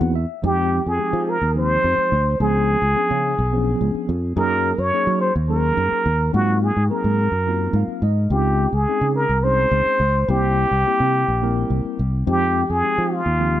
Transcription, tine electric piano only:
0.00 0.14 E3 medium
0.00 0.14 A#3 medium
0.00 0.14 C4 medium
0.00 0.14 D#4 medium
0.00 0.14 F#4 medium
0.00 0.12 F#5 medium
0.15 0.41 E5 medium
0.43 0.80 F3 medium
0.43 0.80 G#3 medium
0.43 0.80 C4 medium
0.43 0.80 D#4 medium
0.43 0.80 G4 medium
0.99 1.36 F3 medium
0.99 1.36 G#3 soft
0.99 1.36 C4 soft
0.99 1.36 D#4 soft
0.99 1.37 G4 medium
1.56 2.11 F3 medium
1.56 2.11 G#3 soft
1.56 2.11 C4 soft
1.56 2.11 D#4 soft
1.56 2.11 G4 medium
2.40 2.77 F3 medium
2.40 2.77 B3 medium
2.40 2.77 C#4 medium
2.40 2.77 D4 medium
2.40 2.77 G#4 medium
2.96 3.33 F3 medium
2.96 3.33 B3 medium
2.96 3.33 C#4 medium
2.96 3.33 D4 soft
2.96 3.33 G#4 medium
3.53 4.08 F3 medium
3.53 4.08 B3 medium
3.53 4.08 C#4 medium
3.53 4.08 D4 medium
3.53 4.08 G#4 medium
4.36 4.73 F#3 medium
4.36 4.74 A#3 medium
4.36 4.74 C#4 medium
4.36 4.74 D#4 medium
4.36 4.74 G#4 medium
4.93 5.30 F#3 medium
4.93 5.30 A#3 medium
4.93 5.30 C#4 medium
4.93 5.30 D#4 medium
4.93 5.31 G#4 medium
5.49 6.05 F#3 medium
5.49 6.05 A#3 medium
5.49 6.05 C#4 soft
5.49 6.05 D#4 medium
5.49 6.05 G#4 medium
6.33 6.71 F#3 medium
6.33 6.71 A#3 medium
6.33 6.71 C4 medium
6.33 6.71 D#4 medium
6.33 6.71 F4 medium
6.90 7.27 F#3 medium
6.90 7.27 A#3 soft
6.90 7.28 C4 medium
6.90 7.28 D#4 medium
6.90 7.28 G#4 medium
7.46 8.02 F#3 soft
7.46 8.02 A#3 soft
7.46 8.02 C4 soft
7.46 8.02 D#4 soft
7.46 8.03 F4 medium
7.76 8.02 F5 medium
8.03 8.30 D#5 medium
8.31 8.68 G#3 medium
8.31 8.69 C4 medium
8.31 8.69 C#4 medium
8.31 8.69 D#4 medium
8.31 8.69 F4 medium
8.88 9.25 G#3 medium
8.88 9.25 C4 medium
8.88 9.25 C#4 soft
8.88 9.25 D#4 medium
8.88 9.26 G#4 medium
9.44 9.99 G#3 medium
9.44 10.00 C4 soft
9.44 10.00 C#4 medium
9.44 10.00 D#4 soft
9.44 10.00 G#4 medium
10.30 10.66 G3 medium
10.30 10.66 A#3 medium
10.30 10.67 C4 medium
10.30 10.67 E4 medium
10.30 10.67 G4 medium
10.87 11.23 G3 medium
10.87 11.23 A#3 medium
10.87 11.23 C4 medium
10.87 11.23 E4 medium
10.87 11.24 G4 medium
11.42 11.98 G3 medium
11.42 11.98 A#3 medium
11.42 11.98 C4 medium
11.42 11.98 E4 medium
11.42 11.98 A#4 medium
12.26 12.64 F3 medium
12.26 12.64 G#3 medium
12.26 12.64 C4 medium
12.26 12.64 D#4 medium
12.26 12.64 G4 medium
12.83 13.20 F3 medium
12.83 13.20 G#3 medium
12.83 13.20 C4 medium
12.83 13.20 D#4 medium
12.83 13.21 G4 medium
13.39 13.60 F3 medium
13.39 13.60 G#3 soft
13.39 13.60 C4 medium
13.39 13.60 D#4 medium
13.39 13.60 G4 medium

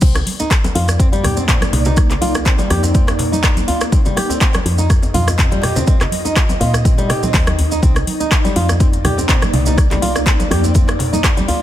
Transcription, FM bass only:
0.02 0.23 C2 loud
0.75 1.70 F2 medium
1.73 2.68 C2 medium
2.71 3.65 F2 loud
4.65 5.11 F2 loud
5.14 6.58 F2 medium
6.61 7.33 A#2 medium
7.34 7.80 D#2 medium
7.83 8.03 C2 loud
8.56 9.51 F2 loud
9.53 10.48 C2 loud
10.51 11.45 F2 loud

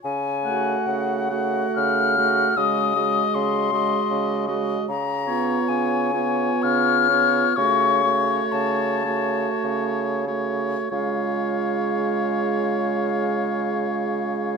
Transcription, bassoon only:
0.04 0.77 C#3 soft
0.87 1.66 C#3 soft
1.76 2.48 C#3 soft
2.57 3.25 C#3 soft
3.35 4.02 C#3 soft
4.11 4.79 C#3 soft
4.89 5.59 C#3 medium
5.69 6.52 C#3 medium
6.64 7.46 C#3 medium
7.58 8.42 C#3 medium
8.53 9.50 C#3 soft
9.64 10.78 C#3 soft
10.92 14.57 C#3 soft

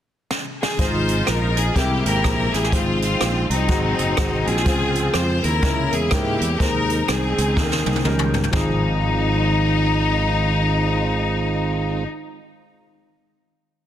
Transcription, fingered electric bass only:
0.79 1.20 G#1 medium
1.28 1.69 A#1 medium
1.76 2.01 C2 medium
2.05 2.25 G#1 medium
2.25 2.50 A#1 medium
2.54 2.70 A1 medium
3.22 3.46 A#1 medium
3.50 3.66 C2 medium
3.69 3.94 G#1 medium
3.99 4.16 F#1 medium
4.18 4.43 G#1 medium
4.47 4.66 A#1 medium
4.66 5.07 C#2 medium
5.14 5.39 F2 medium
5.44 5.63 D#2 medium
5.63 5.88 C#2 medium
5.93 6.09 E2 medium
6.12 6.36 G#2 medium
6.41 6.57 E2 medium
6.60 7.01 D#2 medium
7.09 7.33 C2 medium
7.38 7.54 C#2 medium
7.57 7.81 D#2 medium
7.86 8.02 C2 medium
8.06 8.47 C#2 medium
8.53 12.04 G#1 medium

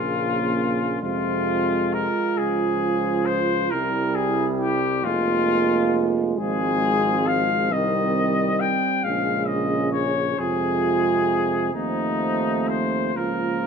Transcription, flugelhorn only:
0.00 1.01 F4 medium
1.02 1.95 F4 loud
1.94 2.39 A#4 medium
2.38 3.27 G#4 medium
3.26 3.72 C5 medium
3.70 4.17 A#4 medium
4.15 4.46 G#4 medium
4.59 5.06 G4 medium
5.04 6.11 F4 loud
6.38 7.28 G#4 loud
7.27 7.74 F5 loud
7.72 8.62 D#5 medium
8.60 9.05 G5 medium
9.03 9.48 F5 medium
9.47 9.92 D#5 medium
9.92 10.40 C#5 medium
10.39 11.73 G#4 loud
11.74 12.70 D#4 medium
12.68 13.18 C5 medium
13.16 13.67 A#4 medium

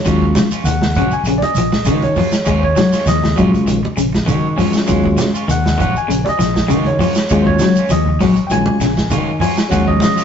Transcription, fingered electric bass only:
0.05 0.33 D#2 medium
0.51 muted fingered electric bass stroke soft
0.64 0.92 D#2 medium
0.96 1.11 A#1 medium
1.23 1.39 A#1 medium
1.55 1.88 A#1 medium
1.86 2.14 D#3 medium
2.46 2.74 D#2 medium
2.92 muted fingered electric bass stroke soft
3.06 3.34 D#2 medium
3.38 3.52 A#1 medium
3.65 3.81 A#1 medium
3.97 4.29 A#1 medium
4.28 4.55 D#3 medium
4.89 5.16 D#2 medium
5.35 muted fingered electric bass stroke soft
5.48 5.76 D#2 loud
5.80 5.94 A#1 medium
6.09 6.24 A#1 medium
6.39 6.71 A#1 medium
6.70 6.97 D#3 medium
7.31 7.58 D#2 medium
7.76 muted fingered electric bass stroke soft
7.90 8.17 D#2 medium
8.21 8.35 A#1 medium
8.50 8.65 A#1 medium
8.80 9.13 A#1 medium
9.11 9.38 D#3 medium
9.71 9.98 D#2 medium
10.16 muted fingered electric bass stroke soft

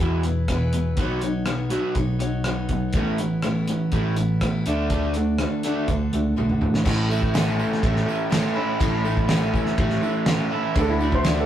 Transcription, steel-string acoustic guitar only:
0.00 0.25 B3 medium
0.00 0.26 E4 medium
0.00 0.25 G#4 medium
0.00 0.23 B4 medium
0.25 0.51 E4 soft
0.25 0.50 G#4 soft
0.25 0.49 B4 soft
0.51 0.99 E3 medium
0.51 0.98 B3 medium
0.51 1.00 E4 medium
0.51 1.00 G#4 medium
0.51 1.01 B4 medium
0.99 1.23 B3 medium
0.99 1.24 D#4 medium
0.99 1.24 F#4 medium
0.99 1.22 C#5 medium
1.23 1.45 D#4 soft
1.23 1.46 F#4 soft
1.23 1.47 C#5 medium
1.45 1.71 B3 medium
1.45 1.71 D#4 medium
1.45 1.70 F#4 medium
1.45 1.69 C#5 medium
1.70 1.95 D#4 soft
1.70 1.96 F#4 soft
1.70 1.96 C#5 medium
1.95 2.20 B3 medium
1.95 2.21 D#4 medium
1.95 2.22 F#4 medium
1.95 2.20 C#5 medium
2.21 2.45 D#4 soft
2.21 2.46 F#4 soft
2.21 2.46 C#5 medium
2.46 2.95 B3 medium
2.46 2.95 D#4 medium
2.46 2.95 F#4 medium
2.46 2.96 C#5 medium
2.94 3.19 A2 medium
2.94 3.19 A3 medium
2.94 3.19 B3 medium
2.94 3.20 C#4 medium
2.94 3.18 E4 medium
3.19 3.43 B3 medium
3.19 3.43 C#4 soft
3.19 3.43 E4 soft
3.42 3.67 A2 medium
3.42 3.68 A3 medium
3.42 3.68 B3 medium
3.42 3.68 C#4 medium
3.42 3.66 E4 medium
3.67 3.93 B3 soft
3.67 3.92 C#4 soft
3.67 3.92 E4 medium
3.92 4.17 A3 medium
3.92 4.17 B3 medium
3.92 4.17 C#4 medium
3.92 4.15 E4 medium
4.16 4.42 B3 medium
4.16 4.41 E4 soft
4.20 4.41 C#4 soft
4.41 4.65 A2 medium
4.41 4.66 A3 medium
4.41 4.67 B3 medium
4.41 4.66 C#4 medium
4.41 4.66 E4 medium
4.67 5.16 D3 soft
4.67 5.16 D4 soft
4.67 5.15 F#4 medium
4.67 5.14 A4 medium
5.15 5.38 D4 soft
5.15 5.39 F#4 soft
5.15 5.39 A4 medium
5.39 5.63 D3 medium
5.39 5.64 D4 medium
5.39 5.64 F#4 medium
5.39 5.62 A4 medium
5.63 5.88 D4 soft
5.63 5.89 F#4 soft
5.63 5.88 A4 soft
5.88 6.12 D3 medium
5.88 6.13 D4 medium
5.88 6.13 F#4 medium
5.88 6.10 A4 medium
6.12 6.37 F#4 soft
6.12 6.36 A4 soft
6.16 6.36 D4 soft
6.36 6.85 D3 medium
6.36 6.85 D4 medium
6.36 6.86 F#4 medium
6.36 6.85 A4 medium
6.85 7.10 A2 medium
6.85 7.10 A3 medium
6.85 7.10 C#4 medium
6.85 7.10 E4 medium
6.85 7.08 A4 medium
7.09 7.33 C#4 medium
7.09 7.34 E4 medium
7.09 7.34 A4 medium
7.34 7.83 A2 medium
7.34 7.82 A3 medium
7.34 7.83 C#4 medium
7.34 7.84 E4 loud
7.34 7.85 A4 loud
7.82 8.07 A3 medium
7.82 8.08 C#4 medium
7.82 8.07 E4 medium
7.82 8.05 A4 medium
8.06 8.30 C#4 soft
8.06 8.31 E4 soft
8.06 8.31 A4 medium
8.30 8.55 A2 medium
8.30 8.56 A3 medium
8.30 8.56 C#4 medium
8.30 8.55 E4 medium
8.30 8.53 A4 loud
8.54 8.80 C#4 soft
8.54 8.80 E4 medium
8.54 8.79 A4 medium
8.79 9.04 A2 medium
8.79 9.05 A3 medium
8.79 9.05 C#4 medium
8.79 9.05 E4 loud
8.79 9.03 A4 loud
9.04 9.28 C#4 medium
9.04 9.28 E4 medium
9.04 9.29 A4 medium
9.28 9.77 A2 medium
9.28 9.76 A3 medium
9.28 9.77 C#4 medium
9.28 9.79 E4 medium
9.28 9.80 A4 medium
9.77 10.02 A3 medium
9.77 10.03 C#4 medium
9.77 10.02 E4 medium
9.77 10.00 A4 medium
10.01 10.26 C#4 medium
10.01 10.27 E4 medium
10.01 10.26 A4 medium
10.26 10.51 A2 medium
10.26 10.51 A3 medium
10.26 10.51 C#4 medium
10.26 10.52 E4 medium
10.26 10.50 A4 medium
10.51 10.76 C#4 soft
10.51 10.76 E4 medium
10.51 10.76 A4 medium
10.74 10.99 D3 medium
10.74 11.00 A3 loud
10.74 11.00 D4 loud
10.74 10.98 E4 medium
10.74 11.00 F#4 loud
10.99 11.24 D4 medium
10.99 11.24 E4 medium
10.99 11.24 F#4 medium
11.23 11.46 D3 medium
11.23 11.46 A3 loud
11.23 11.46 D4 medium
11.23 11.46 E4 loud
11.23 11.46 F#4 loud

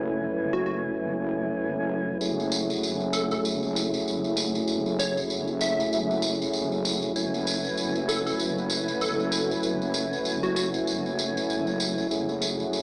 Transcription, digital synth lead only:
0.53 0.61 F#4 medium
0.66 0.78 F#4 medium
3.13 3.25 A4 medium
3.31 3.40 A4 medium
4.99 5.19 C#5 medium
5.61 6.23 E5 medium
8.09 8.20 A4 medium
8.26 8.35 A4 medium
9.01 9.63 A4 medium
10.43 10.51 F#4 medium
10.56 10.68 F#4 medium

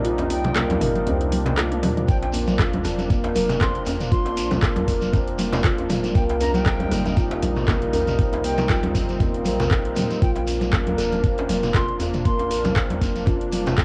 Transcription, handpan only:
0.05 0.18 F4 medium
0.30 0.38 C4 medium
0.56 0.69 A#3 loud
0.81 0.89 A#4 medium
1.07 1.14 C4 loud
1.32 1.45 A#3 medium
1.57 1.71 F4 medium
1.83 1.91 C4 medium
2.08 2.16 C4 loud
2.34 2.47 A#3 medium
2.59 2.73 F4 medium
2.85 2.92 C4 medium
3.10 3.23 A#3 loud
3.35 3.43 A#4 medium
3.61 3.69 C4 loud
3.86 3.99 A#3 medium
4.12 4.25 F4 medium
4.37 4.45 C4 medium
4.63 4.75 A#3 loud
4.88 4.96 A#4 medium
5.13 5.21 C4 loud
5.39 5.52 A#3 medium
5.64 5.78 F4 medium
5.90 5.97 C4 medium
6.15 6.28 A#3 loud
6.41 6.48 A#4 medium
6.66 6.74 C4 loud
6.92 7.04 A#3 medium
7.17 7.30 F4 medium
7.42 7.50 C4 medium
7.68 7.80 A#3 loud
7.93 8.01 A#4 medium
8.19 8.26 C4 loud
8.44 8.57 A#3 medium
8.70 8.83 F4 medium
8.95 9.03 C4 medium
9.21 9.33 A#3 loud
9.46 9.53 A#4 medium
9.71 9.79 C4 loud
9.97 10.09 A#3 medium
10.22 10.35 F4 medium
10.47 10.55 C4 medium
10.73 10.85 A#3 loud
10.98 11.06 A#4 medium
11.23 11.31 C4 loud
11.49 11.62 A#3 medium
11.74 11.88 F4 medium
12.00 12.07 C4 medium
12.25 12.38 A#3 loud
12.51 12.58 A#4 medium
12.76 12.84 C4 loud
13.02 13.14 A#3 medium
13.27 13.40 F4 medium
13.53 13.60 C4 medium
13.78 13.85 A#3 loud

